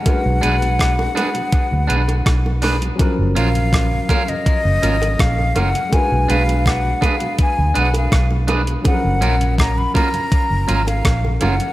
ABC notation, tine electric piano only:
X:1
M:4/4
L:1/8
Q:1/4=82
K:F#
V:1 name="Tine electric piano"
[G,C=DFB]8 | [E,F,CA]8 | [G,=DFB]8 | [E,F,CGA]8 |]